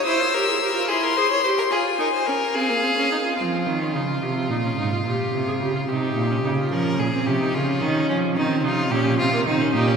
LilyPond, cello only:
\new Staff \with { instrumentName = "Cello" } { \clef bass \time 12/8 \key f \phrygian \tempo 4. = 72 r1. | f8 ees8 des8 c8 bes,8 aes,8 bes,8 c8 des8 c8 bes,8 des8 | f8 bes,8 c8 des8 ees8 f8 ees8 c8 bes,8 c8 ees8 bes,8 | }